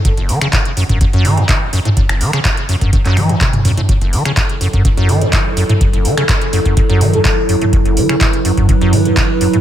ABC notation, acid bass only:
X:1
M:4/4
L:1/16
Q:1/4=125
K:F#m
V:1 name="Acid bass" clef=bass
F,, F,,, E, C, A,, z F,, F,, F,, F,, E, F,, A,, z F,, A,, | F,, F,,, E, C, A,, z F,, F,, F,, F,, E, F,, A,, z F,, A,, | F,, F,,, E, C, A,, z F,, F,, F,, F,, E, F,, A,, z F,, A,, | F,, F,,, E, C, A,, z F,, F,, F,, F,, E, F,, A,, z F,, A,, |
F,, F,,, E, C, A,, z F,, F,, F,, F,, E, F,, A,, z F,, A,, |]